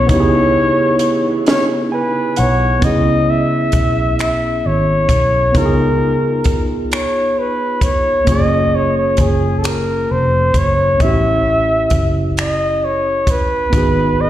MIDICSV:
0, 0, Header, 1, 6, 480
1, 0, Start_track
1, 0, Key_signature, 4, "minor"
1, 0, Tempo, 909091
1, 49, Time_signature, 6, 3, 24, 8
1, 7549, End_track
2, 0, Start_track
2, 0, Title_t, "Flugelhorn"
2, 0, Program_c, 0, 56
2, 55, Note_on_c, 0, 73, 96
2, 751, Note_off_c, 0, 73, 0
2, 786, Note_on_c, 0, 73, 86
2, 870, Note_off_c, 0, 73, 0
2, 1023, Note_on_c, 0, 71, 80
2, 1264, Note_on_c, 0, 73, 81
2, 1272, Note_off_c, 0, 71, 0
2, 1501, Note_on_c, 0, 75, 80
2, 1509, Note_off_c, 0, 73, 0
2, 1744, Note_on_c, 0, 76, 86
2, 1752, Note_off_c, 0, 75, 0
2, 2216, Note_off_c, 0, 76, 0
2, 2220, Note_on_c, 0, 76, 74
2, 2462, Note_on_c, 0, 73, 79
2, 2470, Note_off_c, 0, 76, 0
2, 2942, Note_on_c, 0, 70, 81
2, 2950, Note_off_c, 0, 73, 0
2, 3513, Note_off_c, 0, 70, 0
2, 3662, Note_on_c, 0, 73, 75
2, 3902, Note_on_c, 0, 71, 76
2, 3909, Note_off_c, 0, 73, 0
2, 4139, Note_on_c, 0, 73, 81
2, 4147, Note_off_c, 0, 71, 0
2, 4377, Note_on_c, 0, 75, 88
2, 4385, Note_off_c, 0, 73, 0
2, 4623, Note_on_c, 0, 73, 82
2, 4630, Note_off_c, 0, 75, 0
2, 4736, Note_off_c, 0, 73, 0
2, 4741, Note_on_c, 0, 73, 74
2, 4861, Note_on_c, 0, 68, 73
2, 4869, Note_off_c, 0, 73, 0
2, 5062, Note_on_c, 0, 69, 54
2, 5070, Note_off_c, 0, 68, 0
2, 5099, Note_on_c, 0, 70, 73
2, 5107, Note_off_c, 0, 69, 0
2, 5341, Note_on_c, 0, 72, 81
2, 5349, Note_off_c, 0, 70, 0
2, 5584, Note_on_c, 0, 73, 82
2, 5592, Note_off_c, 0, 72, 0
2, 5818, Note_on_c, 0, 76, 93
2, 5826, Note_off_c, 0, 73, 0
2, 6391, Note_off_c, 0, 76, 0
2, 6547, Note_on_c, 0, 75, 85
2, 6783, Note_on_c, 0, 73, 75
2, 6791, Note_off_c, 0, 75, 0
2, 7027, Note_on_c, 0, 71, 86
2, 7034, Note_off_c, 0, 73, 0
2, 7503, Note_on_c, 0, 75, 86
2, 7511, Note_off_c, 0, 71, 0
2, 7549, Note_off_c, 0, 75, 0
2, 7549, End_track
3, 0, Start_track
3, 0, Title_t, "Tine electric piano"
3, 0, Program_c, 1, 4
3, 0, Control_c, 1, 64, 127
3, 0, Note_on_c, 1, 68, 75
3, 35, Note_on_c, 1, 59, 69
3, 48, Note_on_c, 1, 63, 62
3, 55, Note_off_c, 1, 68, 0
3, 60, Note_on_c, 1, 64, 58
3, 72, Note_on_c, 1, 67, 56
3, 95, Note_off_c, 1, 67, 0
3, 106, Note_on_c, 1, 68, 77
3, 1014, Note_on_c, 1, 80, 65
3, 1235, Note_off_c, 1, 80, 0
3, 1253, Note_on_c, 1, 78, 69
3, 1461, Note_off_c, 1, 59, 0
3, 1467, Note_off_c, 1, 63, 0
3, 1473, Note_off_c, 1, 64, 0
3, 1474, Note_off_c, 1, 78, 0
3, 1475, Note_on_c, 1, 59, 51
3, 1488, Note_on_c, 1, 61, 51
3, 1495, Control_c, 1, 64, 0
3, 1497, Note_off_c, 1, 68, 0
3, 1500, Note_on_c, 1, 64, 55
3, 1512, Note_on_c, 1, 68, 62
3, 1601, Control_c, 1, 64, 127
3, 2901, Note_off_c, 1, 59, 0
3, 2907, Note_off_c, 1, 61, 0
3, 2914, Note_off_c, 1, 64, 0
3, 2915, Note_on_c, 1, 59, 54
3, 2919, Note_off_c, 1, 68, 0
3, 2928, Note_on_c, 1, 63, 53
3, 2935, Control_c, 1, 64, 0
3, 2939, Note_on_c, 1, 65, 51
3, 2953, Note_on_c, 1, 68, 54
3, 2975, Note_off_c, 1, 68, 0
3, 2986, Note_on_c, 1, 68, 64
3, 3040, Control_c, 1, 64, 127
3, 4341, Note_off_c, 1, 59, 0
3, 4347, Note_off_c, 1, 63, 0
3, 4353, Note_off_c, 1, 65, 0
3, 4355, Note_on_c, 1, 58, 57
3, 4367, Note_on_c, 1, 61, 55
3, 4375, Control_c, 1, 64, 0
3, 4376, Note_off_c, 1, 68, 0
3, 4378, Note_on_c, 1, 65, 49
3, 4391, Note_on_c, 1, 68, 59
3, 4481, Control_c, 1, 64, 127
3, 5781, Note_off_c, 1, 58, 0
3, 5787, Note_off_c, 1, 61, 0
3, 5793, Note_off_c, 1, 65, 0
3, 5795, Note_on_c, 1, 59, 48
3, 5799, Note_off_c, 1, 68, 0
3, 5815, Control_c, 1, 64, 0
3, 5820, Note_on_c, 1, 64, 48
3, 5830, Note_on_c, 1, 61, 56
3, 5832, Note_on_c, 1, 67, 62
3, 5836, Note_off_c, 1, 59, 0
3, 5895, Control_c, 1, 64, 127
3, 7233, Note_on_c, 1, 59, 55
3, 7234, Note_off_c, 1, 64, 0
3, 7238, Note_off_c, 1, 61, 0
3, 7239, Note_off_c, 1, 67, 0
3, 7245, Note_on_c, 1, 63, 49
3, 7255, Control_c, 1, 64, 0
3, 7258, Note_on_c, 1, 66, 51
3, 7271, Note_on_c, 1, 68, 59
3, 7359, Control_c, 1, 64, 127
3, 7549, Note_off_c, 1, 59, 0
3, 7549, Note_off_c, 1, 63, 0
3, 7549, Note_off_c, 1, 66, 0
3, 7549, Note_off_c, 1, 68, 0
3, 7549, End_track
4, 0, Start_track
4, 0, Title_t, "String section"
4, 0, Program_c, 2, 48
4, 0, Note_on_c, 2, 49, 68
4, 0, Note_on_c, 2, 52, 72
4, 0, Note_on_c, 2, 59, 64
4, 0, Note_on_c, 2, 68, 66
4, 1466, Note_off_c, 2, 52, 0
4, 1467, Note_off_c, 2, 49, 0
4, 1467, Note_off_c, 2, 59, 0
4, 1469, Note_off_c, 2, 68, 0
4, 7549, End_track
5, 0, Start_track
5, 0, Title_t, "Fingered electric bass"
5, 0, Program_c, 3, 33
5, 0, Note_on_c, 3, 35, 87
5, 54, Note_off_c, 3, 35, 0
5, 54, Note_on_c, 3, 37, 101
5, 1230, Note_off_c, 3, 37, 0
5, 1261, Note_on_c, 3, 35, 86
5, 1474, Note_off_c, 3, 35, 0
5, 1496, Note_on_c, 3, 37, 92
5, 1951, Note_off_c, 3, 37, 0
5, 1975, Note_on_c, 3, 35, 71
5, 2431, Note_off_c, 3, 35, 0
5, 2460, Note_on_c, 3, 32, 73
5, 2673, Note_off_c, 3, 32, 0
5, 2693, Note_on_c, 3, 35, 74
5, 2910, Note_off_c, 3, 35, 0
5, 2934, Note_on_c, 3, 37, 78
5, 3415, Note_off_c, 3, 37, 0
5, 3415, Note_on_c, 3, 34, 71
5, 4351, Note_off_c, 3, 34, 0
5, 4373, Note_on_c, 3, 30, 86
5, 4830, Note_off_c, 3, 30, 0
5, 4854, Note_on_c, 3, 30, 76
5, 5310, Note_off_c, 3, 30, 0
5, 5340, Note_on_c, 3, 29, 73
5, 5553, Note_off_c, 3, 29, 0
5, 5572, Note_on_c, 3, 30, 68
5, 5789, Note_off_c, 3, 30, 0
5, 5814, Note_on_c, 3, 33, 85
5, 6270, Note_off_c, 3, 33, 0
5, 6295, Note_on_c, 3, 30, 74
5, 7231, Note_off_c, 3, 30, 0
5, 7254, Note_on_c, 3, 32, 77
5, 7549, Note_off_c, 3, 32, 0
5, 7549, End_track
6, 0, Start_track
6, 0, Title_t, "Drums"
6, 48, Note_on_c, 9, 42, 65
6, 49, Note_on_c, 9, 36, 125
6, 101, Note_off_c, 9, 36, 0
6, 101, Note_off_c, 9, 42, 0
6, 524, Note_on_c, 9, 42, 82
6, 577, Note_off_c, 9, 42, 0
6, 773, Note_on_c, 9, 42, 78
6, 781, Note_on_c, 9, 38, 110
6, 826, Note_off_c, 9, 42, 0
6, 833, Note_off_c, 9, 38, 0
6, 1248, Note_on_c, 9, 42, 67
6, 1301, Note_off_c, 9, 42, 0
6, 1489, Note_on_c, 9, 42, 56
6, 1490, Note_on_c, 9, 36, 103
6, 1542, Note_off_c, 9, 36, 0
6, 1542, Note_off_c, 9, 42, 0
6, 1964, Note_on_c, 9, 42, 65
6, 1970, Note_on_c, 9, 36, 85
6, 2017, Note_off_c, 9, 42, 0
6, 2023, Note_off_c, 9, 36, 0
6, 2213, Note_on_c, 9, 42, 63
6, 2220, Note_on_c, 9, 26, 87
6, 2266, Note_off_c, 9, 42, 0
6, 2273, Note_off_c, 9, 26, 0
6, 2687, Note_on_c, 9, 36, 78
6, 2688, Note_on_c, 9, 42, 65
6, 2740, Note_off_c, 9, 36, 0
6, 2741, Note_off_c, 9, 42, 0
6, 2929, Note_on_c, 9, 36, 99
6, 2929, Note_on_c, 9, 42, 58
6, 2981, Note_off_c, 9, 42, 0
6, 2982, Note_off_c, 9, 36, 0
6, 3402, Note_on_c, 9, 42, 64
6, 3409, Note_on_c, 9, 36, 85
6, 3455, Note_off_c, 9, 42, 0
6, 3461, Note_off_c, 9, 36, 0
6, 3651, Note_on_c, 9, 42, 63
6, 3659, Note_on_c, 9, 26, 100
6, 3704, Note_off_c, 9, 42, 0
6, 3712, Note_off_c, 9, 26, 0
6, 4126, Note_on_c, 9, 36, 83
6, 4126, Note_on_c, 9, 42, 59
6, 4179, Note_off_c, 9, 36, 0
6, 4179, Note_off_c, 9, 42, 0
6, 4366, Note_on_c, 9, 42, 64
6, 4368, Note_on_c, 9, 36, 106
6, 4419, Note_off_c, 9, 42, 0
6, 4420, Note_off_c, 9, 36, 0
6, 4841, Note_on_c, 9, 42, 68
6, 4848, Note_on_c, 9, 36, 84
6, 4894, Note_off_c, 9, 42, 0
6, 4900, Note_off_c, 9, 36, 0
6, 5089, Note_on_c, 9, 42, 60
6, 5097, Note_on_c, 9, 26, 96
6, 5142, Note_off_c, 9, 42, 0
6, 5149, Note_off_c, 9, 26, 0
6, 5566, Note_on_c, 9, 36, 78
6, 5566, Note_on_c, 9, 42, 63
6, 5619, Note_off_c, 9, 36, 0
6, 5619, Note_off_c, 9, 42, 0
6, 5808, Note_on_c, 9, 42, 58
6, 5809, Note_on_c, 9, 36, 98
6, 5861, Note_off_c, 9, 36, 0
6, 5861, Note_off_c, 9, 42, 0
6, 6284, Note_on_c, 9, 42, 62
6, 6289, Note_on_c, 9, 36, 80
6, 6337, Note_off_c, 9, 42, 0
6, 6342, Note_off_c, 9, 36, 0
6, 6533, Note_on_c, 9, 42, 63
6, 6540, Note_on_c, 9, 26, 91
6, 6586, Note_off_c, 9, 42, 0
6, 6593, Note_off_c, 9, 26, 0
6, 7006, Note_on_c, 9, 36, 82
6, 7007, Note_on_c, 9, 42, 64
6, 7059, Note_off_c, 9, 36, 0
6, 7060, Note_off_c, 9, 42, 0
6, 7248, Note_on_c, 9, 36, 97
6, 7248, Note_on_c, 9, 42, 61
6, 7301, Note_off_c, 9, 36, 0
6, 7301, Note_off_c, 9, 42, 0
6, 7549, End_track
0, 0, End_of_file